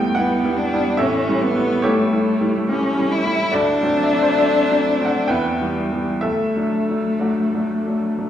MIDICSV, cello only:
0, 0, Header, 1, 2, 480
1, 0, Start_track
1, 0, Tempo, 846262
1, 565, Time_signature, 3, 2, 24, 8
1, 2494, Tempo, 917431
1, 3454, Tempo, 969305
1, 4477, End_track
2, 0, Start_track
2, 0, Title_t, "Cello"
2, 0, Program_c, 0, 42
2, 0, Note_on_c, 0, 57, 61
2, 84, Note_off_c, 0, 57, 0
2, 88, Note_on_c, 0, 59, 53
2, 322, Note_on_c, 0, 62, 61
2, 331, Note_off_c, 0, 59, 0
2, 560, Note_on_c, 0, 61, 60
2, 568, Note_off_c, 0, 62, 0
2, 810, Note_on_c, 0, 59, 71
2, 819, Note_off_c, 0, 61, 0
2, 1050, Note_on_c, 0, 57, 60
2, 1059, Note_off_c, 0, 59, 0
2, 1527, Note_off_c, 0, 57, 0
2, 1531, Note_on_c, 0, 61, 58
2, 1768, Note_on_c, 0, 64, 66
2, 1776, Note_off_c, 0, 61, 0
2, 2006, Note_on_c, 0, 62, 76
2, 2014, Note_off_c, 0, 64, 0
2, 2969, Note_on_c, 0, 59, 57
2, 2977, Note_off_c, 0, 62, 0
2, 3209, Note_on_c, 0, 55, 47
2, 3217, Note_off_c, 0, 59, 0
2, 3454, Note_on_c, 0, 57, 50
2, 3461, Note_off_c, 0, 55, 0
2, 4477, Note_off_c, 0, 57, 0
2, 4477, End_track
0, 0, End_of_file